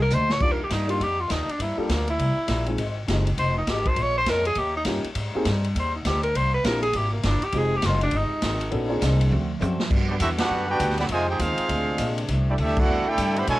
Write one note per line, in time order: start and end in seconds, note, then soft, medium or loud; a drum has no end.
0.02 0.15 A#4 loud
0.10 0.40 D2 loud
0.10 0.31 A#2 medium
0.10 0.30 F3 medium
0.10 0.31 G#3 medium
0.10 0.31 D4 medium
0.10 0.33 C5 loud
0.10 hi-hat pedal medium
0.30 0.44 C#5 loud
0.30 snare medium
0.40 0.69 D#2 medium
0.40 0.60 D#3 soft
0.40 0.57 G3 medium
0.40 0.60 G3 soft
0.40 0.57 A#3 soft
0.40 0.61 A#3 soft
0.40 0.57 D4 soft
0.40 0.62 D4 soft
0.40 0.57 D#4 soft
0.40 0.58 F4 medium
0.40 0.53 D5 loud
0.40 kick medium
0.40 crash medium
0.52 0.65 A#4 medium
0.63 0.74 G4 medium
0.69 0.99 G2 medium
0.69 0.89 D#3 medium
0.69 0.90 G3 medium
0.69 0.90 A#3 medium
0.69 0.90 D4 medium
0.69 0.89 D#4 medium
0.69 kick soft
0.69 snare medium
0.69 hi-hat pedal medium
0.69 ride medium
0.87 0.98 G3 medium
0.87 0.98 A#3 medium
0.87 0.98 D4 medium
0.87 0.98 D#4 medium
0.87 1.04 F4 medium
0.87 0.99 G4 medium
0.87 ride medium
0.98 1.29 F2 medium
0.98 1.19 D#3 soft
0.98 1.20 G3 soft
0.98 1.20 A#3 medium
0.98 1.20 D4 medium
0.98 kick soft
0.98 ride medium
1.03 1.22 G4 loud
1.20 1.33 F4 medium
1.27 1.47 D#2 loud
1.27 1.48 D#3 medium
1.27 1.49 G3 medium
1.27 1.49 A#3 medium
1.27 1.49 D4 medium
1.27 kick soft
1.27 snare medium
1.27 hi-hat pedal medium
1.27 ride medium
1.31 1.52 D#4 medium
1.48 1.63 D4 medium
1.48 muted upright bass stroke soft
1.48 ride soft
1.58 1.78 G2 soft
1.58 1.76 G2 medium
1.58 1.79 F3 soft
1.58 1.80 A#3 medium
1.58 1.80 D4 medium
1.58 1.80 E4 medium
1.58 kick soft
1.58 ride medium
1.77 1.87 G3 medium
1.77 1.95 G3 medium
1.77 1.87 A#3 medium
1.77 1.88 D4 medium
1.77 1.88 F4 medium
1.77 1.88 A4 medium
1.77 muted upright bass stroke soft
1.87 2.18 D2 medium
1.87 2.08 G2 medium
1.87 2.08 F3 medium
1.87 2.09 A#3 medium
1.87 2.09 D4 medium
1.87 kick soft
1.87 snare medium
1.87 hi-hat pedal medium
1.87 ride medium
1.94 2.09 A#3 medium
2.08 2.70 E4 loud
2.08 ride medium
2.18 2.36 C2 medium
2.18 2.38 C3 soft
2.18 2.38 G3 soft
2.18 2.39 A#3 medium
2.18 2.39 E4 medium
2.18 kick soft
2.18 ride medium
2.37 muted upright bass stroke soft
2.47 2.77 A#1 loud
2.47 2.67 C3 medium
2.47 2.68 G3 medium
2.47 2.68 A#3 medium
2.47 2.68 E4 medium
2.47 kick soft
2.47 snare medium
2.47 hi-hat pedal medium
2.47 ride medium
2.66 2.76 G#3 medium
2.66 2.77 C4 medium
2.66 2.77 D#4 medium
2.66 2.77 F4 medium
2.66 2.77 G#4 medium
2.66 ride soft
2.77 3.07 G#1 medium
2.77 2.97 F2 medium
2.77 2.98 D#3 medium
2.77 2.98 G#3 medium
2.77 2.99 C4 medium
2.77 kick soft
2.77 ride medium
3.07 3.37 F#1 loud
3.07 3.27 F2 medium
3.07 3.27 D#3 medium
3.07 3.24 G#3 medium
3.07 3.27 G#3 medium
3.07 3.25 C4 medium
3.07 3.28 C4 medium
3.07 3.25 D#4 medium
3.07 3.25 F4 medium
3.07 3.25 G4 medium
3.07 kick soft
3.07 snare medium
3.07 hi-hat pedal medium
3.07 ride medium
3.27 ride medium
3.36 3.66 F1 medium
3.36 3.56 F2 soft
3.36 3.57 D#3 medium
3.36 3.57 G#3 medium
3.36 3.58 C4 medium
3.36 3.55 C5 loud
3.36 kick soft
3.36 ride medium
3.57 3.71 D#4 medium
3.67 3.95 G#1 loud
3.67 3.87 F2 medium
3.67 3.87 D#3 medium
3.67 3.87 G#3 medium
3.67 3.88 C4 medium
3.67 3.89 G4 loud
3.67 kick soft
3.67 snare medium
3.67 hi-hat pedal medium
3.67 ride medium
3.85 4.03 C5 loud
3.85 kick medium
3.85 ride soft
3.96 4.25 A#1 medium
3.96 4.16 A#2 medium
3.96 4.17 G#3 medium
3.96 4.17 C#4 medium
3.96 4.18 F4 medium
3.96 kick soft
3.96 ride medium
4.02 4.17 C#5 loud
4.17 4.31 C5 loud
4.26 4.55 F2 loud
4.26 4.46 A#2 medium
4.26 4.47 G#3 medium
4.26 4.47 C#4 medium
4.26 4.48 F4 medium
4.26 4.46 A#4 loud
4.26 kick soft
4.26 snare medium
4.26 hi-hat pedal medium
4.26 ride medium
4.45 4.60 G#4 loud
4.45 ride medium
4.55 4.84 D#2 medium
4.55 4.76 D#3 soft
4.55 4.76 A#3 soft
4.55 4.77 C#4 medium
4.55 4.76 G4 loud
4.55 kick soft
4.55 ride medium
4.59 4.77 G4 medium
4.77 4.83 D#4 medium
4.84 5.03 G2 medium
4.84 5.06 D#3 medium
4.84 5.02 A#3 medium
4.84 5.06 A#3 medium
4.84 5.02 C#4 medium
4.84 5.06 C#4 medium
4.84 5.02 D#4 medium
4.84 5.03 F4 medium
4.84 5.03 G4 medium
4.84 5.07 G4 medium
4.84 kick soft
4.84 snare medium
4.84 hi-hat pedal medium
4.84 ride medium
5.04 muted upright bass stroke soft
5.04 ride soft
5.15 5.32 G#2 medium
5.15 5.35 G#2 medium
5.15 5.36 G3 medium
5.15 5.36 C4 medium
5.15 kick soft
5.15 ride medium
5.19 5.37 D#4 medium
5.35 5.44 A#3 medium
5.35 5.44 C4 medium
5.35 5.45 D#4 medium
5.35 5.45 G4 medium
5.35 5.45 G#4 medium
5.35 muted upright bass stroke soft
5.44 5.74 G2 loud
5.44 5.64 G#2 medium
5.44 5.65 G3 medium
5.44 5.65 C4 medium
5.44 5.65 D#4 medium
5.44 kick soft
5.44 snare medium
5.44 hi-hat pedal medium
5.44 ride medium
5.64 ride medium
5.74 6.04 D#2 medium
5.74 5.94 G#2 medium
5.74 5.95 G3 soft
5.74 5.95 C4 medium
5.74 5.96 D#4 medium
5.74 kick soft
5.74 ride medium
5.79 5.95 C5 medium
5.95 6.07 D#4 medium
6.04 6.34 D2 loud
6.04 6.24 G#2 medium
6.04 6.25 G3 medium
6.04 6.25 C4 medium
6.04 6.25 D#4 medium
6.04 6.23 G4 loud
6.04 kick soft
6.04 snare medium
6.04 hi-hat pedal medium
6.04 ride medium
6.23 6.38 A#4 loud
6.23 ride soft
6.34 6.63 C2 medium
6.34 6.54 C3 medium
6.34 6.54 G3 medium
6.34 6.55 A#3 medium
6.34 6.55 E4 medium
6.34 6.53 C5 loud
6.34 kick soft
6.34 ride medium
6.54 6.67 B4 loud
6.64 6.93 A#1 medium
6.64 6.84 C3 medium
6.64 6.84 G3 medium
6.64 6.81 A#3 medium
6.64 6.84 A#3 medium
6.64 6.81 C4 medium
6.64 6.81 D4 medium
6.64 6.85 E4 medium
6.64 6.82 E4 medium
6.64 6.82 G4 medium
6.64 6.82 A#4 loud
6.64 kick soft
6.64 snare medium
6.64 hi-hat pedal medium
6.64 ride medium
6.82 6.97 G#4 loud
6.82 ride medium
6.93 7.22 G#1 medium
6.93 7.13 C3 medium
6.93 7.14 G3 medium
6.93 7.14 A#3 medium
6.93 7.15 E4 medium
6.93 7.12 G4 loud
6.93 kick soft
6.93 ride medium
7.13 7.26 A#3 medium
7.22 7.41 G1 loud
7.22 7.43 C3 medium
7.22 7.43 G3 medium
7.22 7.44 A#3 medium
7.22 7.46 D4 medium
7.22 7.44 E4 medium
7.22 kick soft
7.22 snare medium
7.22 hi-hat pedal medium
7.22 ride medium
7.42 7.59 G4 loud
7.42 muted upright bass stroke soft
7.42 ride medium
7.52 7.82 F1 medium
7.52 7.72 F2 medium
7.52 7.73 D#3 medium
7.52 8.36 G#3 medium
7.52 7.74 G#3 medium
7.52 8.36 C4 medium
7.52 7.74 C4 medium
7.52 8.36 D#4 soft
7.52 8.36 F4 medium
7.52 8.36 G4 medium
7.52 kick soft
7.52 ride medium
7.57 7.78 G#4 loud
7.76 7.87 G4 loud
7.82 8.12 F#1 loud
7.82 8.02 F2 medium
7.82 8.03 D#3 medium
7.82 8.03 G#3 medium
7.82 8.04 C4 medium
7.82 8.03 F4 loud
7.82 kick soft
7.82 snare medium
7.82 hi-hat pedal medium
7.82 ride medium
8.01 8.19 D4 loud
8.01 ride medium
8.11 8.30 G1 medium
8.11 8.31 F2 medium
8.11 8.32 D#3 medium
8.11 8.32 G#3 medium
8.11 8.33 C4 medium
8.11 kick soft
8.11 ride medium
8.17 8.74 D#4 medium
8.31 muted upright bass stroke soft
8.41 8.71 G#1 loud
8.41 8.61 F2 medium
8.41 8.62 D#3 medium
8.41 8.62 G#3 medium
8.41 8.63 C4 medium
8.41 kick soft
8.41 snare medium
8.41 hi-hat pedal medium
8.41 ride medium
8.61 ride soft
8.70 9.01 A#1 medium
8.70 8.91 A#2 medium
8.70 8.91 F3 medium
8.70 8.92 G#3 medium
8.70 8.88 B3 medium
8.70 8.88 C#4 medium
8.70 8.93 D4 medium
8.70 8.88 D#4 medium
8.70 8.89 F#4 medium
8.70 8.89 A4 medium
8.70 kick soft
8.70 ride medium
8.89 9.30 A#3 medium
8.89 9.30 C4 medium
8.89 9.31 D4 medium
8.89 9.31 F4 medium
8.89 9.31 G#4 medium
9.00 9.30 C2 loud
9.00 9.20 A#2 medium
9.00 9.21 F3 medium
9.00 9.21 G#3 medium
9.00 9.22 D4 medium
9.00 kick soft
9.00 snare medium
9.00 hi-hat pedal medium
9.00 ride medium
9.21 ride medium
9.29 9.60 D2 medium
9.29 9.50 D3 medium
9.29 9.50 A3 medium
9.29 9.51 C4 medium
9.29 9.51 F#4 medium
9.29 high tom medium
9.60 9.90 F#2 loud
9.60 9.80 D3 medium
9.60 9.80 A3 medium
9.60 9.81 C4 medium
9.60 9.81 F#4 medium
9.60 hi-hat pedal medium
9.60 high tom medium
9.80 snare medium
9.89 10.19 G2 medium
9.89 11.08 D3 medium
9.89 10.10 G3 medium
9.89 11.08 G3 medium
9.89 11.08 B3 medium
9.89 10.10 B3 medium
9.89 10.11 D4 medium
9.89 11.08 F#4 medium
9.89 kick medium
9.89 crash loud
9.94 10.12 F#4 medium
10.08 10.14 F#3 medium
10.08 10.14 B3 medium
10.08 10.15 B3 medium
10.08 10.14 D4 medium
10.08 10.14 F#4 medium
10.08 10.14 G4 medium
10.08 10.14 D5 medium
10.20 10.49 E2 loud
10.20 10.40 G3 medium
10.20 10.41 B3 medium
10.20 10.29 C4 medium
10.20 10.41 D4 medium
10.20 10.29 E4 medium
10.20 10.30 F#4 medium
10.20 10.41 F#4 medium
10.20 10.30 A4 medium
10.20 10.29 E5 loud
10.20 kick soft
10.20 hi-hat pedal medium
10.20 ride medium
10.38 10.67 B3 medium
10.38 10.67 D4 medium
10.38 10.67 F#4 medium
10.38 10.66 G4 medium
10.38 10.66 B4 medium
10.38 10.67 F#5 loud
10.38 snare loud
10.38 ride medium
10.50 10.79 F#2 medium
10.50 10.70 G3 soft
10.50 10.71 B3 medium
10.50 10.71 D4 medium
10.54 10.72 F#4 medium
10.69 10.97 B3 medium
10.69 10.96 D4 medium
10.69 10.97 D4 medium
10.69 10.96 F#4 medium
10.69 10.97 G4 medium
10.69 10.96 B4 medium
10.69 10.96 G5 loud
10.80 11.09 D2 loud
10.80 11.00 G3 medium
10.80 11.00 B3 medium
10.80 11.01 D4 medium
10.80 11.01 F#4 medium
10.80 kick soft
10.80 hi-hat pedal medium
10.80 ride medium
10.90 snare soft
10.98 11.05 D3 medium
10.98 11.05 F#3 medium
10.98 11.05 B3 medium
10.98 11.04 G4 medium
10.98 11.04 D5 medium
10.98 11.04 F#5 medium
10.98 11.04 B5 medium
10.98 snare medium
10.98 ride medium
11.09 11.38 F2 loud
11.09 11.27 C3 loud
11.09 11.69 D#3 medium
11.09 11.28 D#3 loud
11.09 11.29 F3 medium
11.09 11.28 G#3 loud
11.09 11.69 G#3 medium
11.09 11.30 C4 medium
11.09 11.69 C4 medium
11.09 11.30 D#4 medium
11.09 11.69 F4 medium
11.09 11.30 G#4 medium
11.09 11.28 C5 medium
11.09 11.28 D#5 loud
11.09 11.28 G#5 loud
11.09 kick soft
11.09 ride medium
11.13 11.28 F4 loud
11.28 11.39 D#4 medium
11.28 11.39 G4 medium
11.28 11.40 G#4 medium
11.28 11.39 C5 medium
11.28 11.39 G5 loud
11.39 11.57 D#2 loud
11.39 11.59 F3 medium
11.39 12.18 G#3 medium
11.39 11.59 C4 medium
11.39 12.18 C4 medium
11.39 11.59 D#4 medium
11.39 11.70 D#4 medium
11.39 12.17 F4 medium
11.39 11.60 G#4 medium
11.39 12.18 G#4 medium
11.39 12.18 C5 medium
11.39 12.18 F5 loud
11.39 kick soft
11.39 hi-hat pedal medium
11.39 ride medium
11.58 muted upright bass stroke soft
11.58 ride medium
11.67 11.98 D2 medium
11.67 11.88 A#2 soft
11.67 11.88 G#3 medium
11.67 12.29 A#3 medium
11.67 11.88 C4 medium
11.67 11.89 D4 medium
11.67 kick soft
11.67 ride medium
11.71 12.29 C3 medium
11.71 12.29 G#3 medium
11.71 12.29 D4 medium
11.97 12.27 A#1 loud
11.97 12.17 A#2 medium
11.97 12.18 G#3 medium
11.97 12.19 C4 medium
11.97 12.19 D4 medium
11.97 kick soft
11.97 hi-hat pedal medium
11.97 ride medium
12.18 ride medium
12.28 12.57 C2 medium
12.28 12.48 C3 medium
12.28 13.60 D3 medium
12.28 12.48 E3 medium
12.28 12.49 A3 medium
12.28 13.60 A3 medium
12.28 13.46 C4 medium
12.28 12.49 D4 medium
12.28 13.47 E4 medium
12.28 kick soft
12.28 ride medium
12.50 12.54 G3 medium
12.50 12.54 A3 medium
12.50 12.55 D4 medium
12.50 12.54 E4 medium
12.50 12.54 G4 medium
12.50 12.55 D5 medium
12.57 12.87 D2 loud
12.57 12.77 C3 medium
12.57 12.78 E3 medium
12.57 12.77 G3 medium
12.57 12.78 A3 medium
12.57 12.77 A3 medium
12.57 12.78 D4 medium
12.57 12.77 D4 medium
12.57 kick soft
12.57 hi-hat pedal medium
12.57 ride medium
12.61 12.77 E4 medium
12.61 12.77 G4 medium
12.61 12.77 A4 medium
12.61 12.77 E5 loud
12.77 13.07 G3 medium
12.77 13.07 A3 medium
12.77 13.08 E4 medium
12.77 13.07 F#4 medium
12.77 13.08 A4 medium
12.77 13.08 D5 medium
12.77 13.07 F#5 loud
12.77 kick loud
12.77 crash medium
12.87 13.05 E2 medium
12.87 13.07 C3 medium
12.87 13.08 E3 soft
12.87 13.08 A3 medium
12.87 13.09 D4 medium
13.07 13.37 A3 loud
13.07 13.36 E4 loud
13.07 13.37 E4 medium
13.07 13.36 G4 loud
13.07 13.37 A4 medium
13.07 13.37 D5 loud
13.07 13.37 G5 loud
13.07 muted upright bass stroke soft
13.17 13.46 G2 loud
13.17 13.37 C3 medium
13.17 13.38 E3 medium
13.17 13.38 A3 medium
13.17 13.38 D4 medium
13.17 kick soft
13.17 hi-hat pedal medium
13.17 ride medium
13.35 13.46 B3 medium
13.35 13.48 G4 medium
13.35 13.48 C5 medium
13.35 13.48 E5 medium
13.35 13.48 B5 medium
13.35 ride medium
13.47 13.60 B2 medium
13.47 13.60 F#3 medium
13.47 13.60 G#3 medium
13.47 13.60 A3 medium
13.47 13.60 B3 medium
13.47 13.60 E4 loud
13.47 13.60 F#4 medium
13.47 13.60 A4 loud
13.47 13.60 C#5 loud
13.47 13.60 G#5 loud
13.47 kick soft
13.47 ride medium
13.51 13.60 D4 medium